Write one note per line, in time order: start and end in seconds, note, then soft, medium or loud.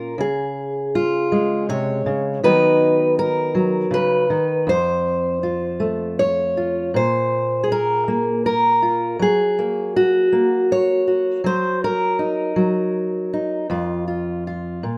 0.00 0.18 A#2 medium
0.00 0.14 A#3 medium
0.00 0.14 C#4 soft
0.00 0.14 F4 soft
0.00 0.20 A#4 loud
0.18 2.05 C#3 medium
0.18 1.70 G#4 loud
0.95 1.69 F4 medium
1.32 2.43 G#3 medium
1.69 2.06 C3 medium
1.69 2.43 C#5 loud
2.06 2.43 C#3 medium
2.44 3.90 D#3 medium
2.44 3.54 F#3 medium
2.44 4.63 B3 soft
2.44 4.64 D#4 medium
2.44 3.18 B4 loud
3.19 3.93 A#4 loud
3.55 4.30 F#3 medium
3.91 4.29 C#3 medium
3.91 4.68 B4 medium
4.30 4.67 D#3 medium
4.67 6.94 F2 medium
4.67 6.19 C5 loud
5.43 6.56 F4 soft
5.80 6.90 A3 medium
6.19 6.95 C#5 medium
6.57 6.90 F4 soft
6.94 9.19 A#2 medium
6.94 7.71 C5 loud
7.64 8.45 G#4 medium
7.72 8.45 A#4 loud
8.08 9.25 A#3 medium
8.46 9.21 A#4 medium
8.82 9.16 F4 medium
9.19 11.41 F#3 medium
9.19 9.96 G#4 medium
9.59 10.32 A#3 soft
9.96 11.06 F#4 medium
10.32 11.44 A#3 medium
10.72 11.46 C#5 medium
11.07 11.41 F#4 soft
11.44 12.55 F#3 medium
11.44 11.83 C5 loud
11.84 14.98 A#4 medium
12.19 13.32 D#4 soft
12.56 13.65 F#3 medium
13.33 13.66 D#4 soft
13.70 14.84 F2 medium
13.70 14.06 F4 medium
14.08 14.45 F4 soft
14.47 14.98 F4 soft
14.83 14.98 A#2 medium